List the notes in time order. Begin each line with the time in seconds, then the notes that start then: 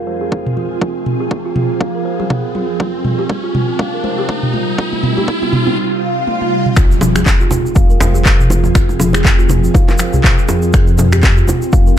Already playing: F3 C4 F4 G#4, riser
0.07 F1 C5
0.21 G#4
0.32 C5, kick
0.46 mid tom
0.57 F4, mid tom
0.81 F1 F4, kick, mid tom
1.06 mid tom
1.20 G#4
1.31 kick
1.45 F4
1.56 F4, mid tom
1.70 F4
1.80 F5, kick, mid tom
1.95 A#4
2.05 C5
2.19 C2 G#4, mid tom
2.30 kick, mid tom
2.55 F2 F4, mid tom
2.80 C3 G3 C4 D#4 F4, kick, mid tom
3.05 mid tom
3.19 G4
3.29 kick, mid tom
3.43 F4
3.54 F4, mid tom
3.68 F4
3.79 F1 F5, kick, mid tom
3.94 A#4
4.04 F1 C5, mid tom
4.18 G4
4.29 kick, mid tom
4.43 mid tom
4.53 F4, mid tom
4.78 F1 F4, kick, mid tom
4.93 mid tom
5.03 mid tom
5.17 G4, mid tom
5.28 kick, mid tom
5.42 F4, mid tom
5.53 F4, mid tom
5.67 F4, mid tom
5.78 swell
6.27 high tom
6.41 high tom
6.66 mid tom
6.76 F3 C4 F4 G#4, finger snap, kick, impact, shaker
6.92 shaker
7.01 mid tom, high bongo, high conga, shaker
7.15 G#4, finger snap, high conga, low conga, shaker
7.26 kick, clap, high bongo, shaker
7.40 F4, shaker
7.51 F4, mid tom, low bongo, low conga, shaker
7.65 F4, shaker
7.75 F1 F5, kick, shaker
7.90 A#4, shaker
8.00 F1 C5, finger snap, high bongo, low conga, shaker
8.14 G#4, shaker
8.25 C5, kick, clap, shaker
8.40 mid tom, shaker
8.50 F4, low bongo, high conga, shaker
8.64 low conga, shaker
8.75 F1 F4, finger snap, kick, shaker
8.89 low bongo, shaker
9.00 mid tom, high bongo, high conga, shaker
9.13 G#4, finger snap, low bongo, high conga, shaker
9.24 kick, clap, high bongo, shaker
9.39 F4, shaker
9.49 F4, mid tom, low bongo, low conga, shaker
9.64 F4, shaker
9.74 F5, kick, low bongo, shaker
9.88 A#4, clap, low bongo, shaker
9.98 C5, finger snap, high conga, shaker
10.13 C2 G#4, shaker
10.24 kick, clap, mid tom, shaker
10.38 shaker
10.48 F2 F4, high bongo, high conga, shaker
10.62 shaker
10.73 C3 G3 D#4, finger snap, kick, shaker
10.87 shaker
10.98 mid tom, high bongo, high conga, shaker
11.12 G4, finger snap, high conga, low conga, shaker
11.23 kick, clap, high bongo, shaker
11.37 F4, shaker
11.47 F4, mid tom, low bongo, low conga, shaker
11.62 F4, shaker
11.72 F1 F5, kick, shaker
11.87 A#4, shaker